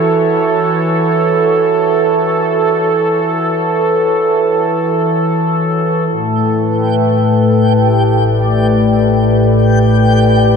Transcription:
0.00 6.07 E3 medium
0.00 7.53 E4 medium
0.00 6.09 F#4 medium
0.00 8.11 A4 medium
0.00 6.09 C#5 medium
6.07 10.56 A1 medium
6.07 10.56 G5 medium
6.12 10.56 A2 medium
6.56 10.56 B4 medium
6.77 10.56 A3 medium
7.71 10.56 G4 medium
8.19 10.56 D5 medium

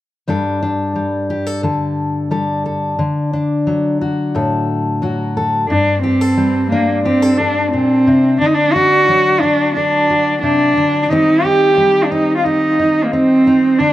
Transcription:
0.28 2.98 G2 medium
0.28 0.94 G3 soft
0.28 0.62 D4 soft
0.28 1.30 A4 soft
0.63 3.33 D4 soft
0.96 2.30 G3 soft
1.30 1.47 G4 medium
1.47 1.63 A4 soft
1.63 2.94 D3 soft
1.63 2.31 A4 soft
2.31 2.94 G3 soft
2.31 2.65 A4 soft
2.66 4.35 A4 soft
2.99 5.65 D3 medium
3.33 5.65 D4 medium
3.67 5.01 F#3 soft
4.01 5.01 F#4 soft
4.35 5.65 A2 medium
4.35 5.36 A4 soft
5.02 5.65 F#3 soft
5.02 5.66 F#4 soft
5.37 5.66 A4 medium
5.69 7.72 G2 medium
5.69 6.00 D4 medium
6.03 6.66 C4 medium
6.03 6.21 G4 medium
6.21 7.05 A4 soft
6.37 8.36 G3 soft
6.71 7.02 A#3 medium
6.71 8.75 D4 soft
7.04 7.39 C4 medium
7.04 7.22 G4 medium
7.22 7.39 A4 soft
7.38 7.71 D4 medium
7.38 8.36 A4 soft
7.72 8.06 A#2 soft
7.72 8.35 C4 medium
8.07 8.40 C3 soft
8.40 10.43 D3 medium
8.40 8.48 D4 medium
8.46 8.56 D#4 medium
8.54 8.75 D4 medium
8.73 9.42 D4 soft
8.73 9.42 F#4 medium
9.08 11.06 F#3 soft
9.41 9.74 D4 medium
9.41 11.12 D4 soft
9.75 10.38 D4 medium
9.75 11.07 A4 soft
10.10 11.06 F#4 soft
10.42 10.76 C3 soft
10.42 11.03 D4 medium
10.77 11.10 D3 medium
11.03 11.11 D4 medium
11.09 13.76 D#3 medium
11.09 11.76 G3 soft
11.09 12.11 C4 soft
11.09 11.45 D#4 medium
11.09 11.43 D#4 soft
11.09 12.45 G4 medium
11.44 12.78 D#4 soft
11.44 12.05 G4 medium
11.78 13.76 G3 medium
12.04 12.12 D4 medium
12.11 13.12 C4 soft
12.11 12.36 D#4 medium
12.36 12.46 F4 medium
12.44 13.06 D#4 medium
12.44 13.80 G4 soft
12.79 13.46 D#4 soft
13.04 13.13 A#3 soft
13.12 13.80 C4 medium
13.12 13.76 C4 soft
13.47 13.76 D#4 soft
13.79 13.93 D3 medium
13.79 13.93 D4 medium

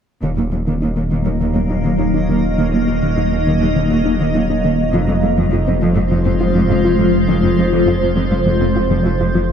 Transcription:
0.22 4.95 D#1 medium
0.22 0.28 D#2 soft
0.22 0.32 D#3 medium
0.22 4.90 F#3 soft
0.22 4.90 A#3 soft
0.22 4.90 D#4 soft
0.22 4.90 D#5 soft
0.37 0.43 D#2 soft
0.37 0.47 F#3 soft
0.52 0.58 D#2 soft
0.52 0.61 F#3 soft
0.67 0.73 D#2 soft
0.67 0.76 D#3 medium
0.82 0.88 D#2 soft
0.82 0.91 D#4 soft
0.96 1.02 D#2 soft
0.96 1.06 A#3 soft
1.11 1.17 D#2 soft
1.11 1.20 D#3 medium
1.25 1.31 D#2 soft
1.25 1.35 F#3 soft
1.40 1.46 D#2 soft
1.40 1.50 D#3 medium
1.55 1.61 D#2 soft
1.55 1.64 A#3 soft
1.69 1.75 D#2 soft
1.69 1.79 D#4 medium
1.84 1.90 D#2 soft
1.84 1.93 D#3 medium
1.99 2.05 D#2 soft
1.99 2.08 D#4 soft
2.14 2.20 D#2 soft
2.14 2.23 D#4 soft
2.29 2.35 D#2 soft
2.29 2.38 D#3 medium
2.58 2.64 D#2 soft
2.58 2.67 D#3 medium
2.73 2.79 D#2 soft
2.73 2.82 F#3 soft
2.88 2.94 D#2 soft
2.88 2.97 F#3 soft
3.02 3.08 D#2 soft
3.02 3.11 D#3 medium
3.17 3.23 D#2 soft
3.17 3.26 D#4 soft
3.32 3.38 D#2 soft
3.32 3.41 A#3 soft
3.47 3.52 D#2 soft
3.47 3.56 D#3 medium
3.61 3.67 D#2 soft
3.61 3.71 F#3 medium
3.76 3.82 D#2 soft
3.76 3.85 D#3 medium
3.91 3.97 D#2 soft
3.91 3.99 A#3 soft
4.05 4.12 D#2 soft
4.05 4.14 D#4 medium
4.20 4.26 D#2 medium
4.20 4.29 D#3 medium
4.35 4.41 D#2 soft
4.35 4.44 D#4 soft
4.50 4.56 D#2 soft
4.50 4.59 D#4 medium
4.64 4.70 D#2 soft
4.64 4.73 D#3 medium
4.93 9.52 F1 medium
4.93 4.99 F2 medium
4.93 9.52 F3 soft
4.93 5.03 F3 medium
4.93 9.52 G#3 medium
4.93 9.52 F4 medium
4.93 9.52 C5 medium
5.08 5.14 F2 soft
5.08 5.17 G#3 soft
5.22 5.28 F2 soft
5.22 5.32 G#3 medium
5.37 5.43 F2 medium
5.37 5.47 F3 medium
5.52 5.58 F2 soft
5.52 5.61 F4 soft
5.67 5.73 F2 soft
5.67 5.76 C4 medium
5.81 5.87 F2 medium
5.81 5.91 F3 medium
5.96 6.02 F2 soft
5.96 6.06 G#3 medium
6.11 6.17 F2 soft
6.11 6.20 F3 medium
6.25 6.31 F2 soft
6.25 6.35 C4 soft
6.40 6.46 F2 soft
6.40 6.49 F4 medium
6.55 6.61 F2 medium
6.55 6.64 F3 medium
6.70 6.76 F2 soft
6.70 6.79 F4 soft
6.84 6.90 F2 soft
6.84 6.93 F4 medium
6.99 7.05 F2 medium
6.99 7.08 F3 medium
7.28 7.34 F2 medium
7.28 7.38 F3 medium
7.43 7.49 F2 soft
7.43 7.53 G#3 soft
7.58 7.64 F2 soft
7.58 7.67 G#3 medium
7.72 7.78 F2 medium
7.72 7.82 F3 medium
7.87 7.93 F2 soft
7.87 7.97 F4 medium
8.02 8.08 F2 soft
8.02 8.11 C4 soft
8.16 8.22 F2 medium
8.16 8.26 F3 medium
8.31 8.37 F2 soft
8.31 8.40 G#3 soft
8.46 8.52 F2 soft
8.46 8.55 F3 medium
8.61 8.67 F2 soft
8.61 8.70 C4 soft
8.75 8.81 F2 soft
8.75 8.85 F4 medium
8.90 8.96 F2 soft
8.90 9.00 F3 medium
9.04 9.11 F2 soft
9.04 9.15 F4 soft
9.20 9.26 F2 soft
9.20 9.29 F4 medium
9.34 9.40 F2 soft
9.34 9.44 F3 medium

